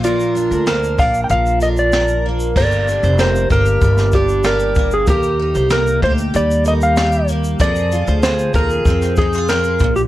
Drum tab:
CC |----------------|x---------------|----------------|----------------|
SH |xxxxxxxxxxxxxx-x|-xxxxxxxxxxxxxxx|xx-xxx-xxxxxxxxx|xxxxxxxxxxxxxxxx|
SD |----o-------o---|----o----o--o---|----o-------o---|----o----o--o---|
BD |------o---------|o-----o-o-o---o-|o-----o---------|o-----o-o-o---o-|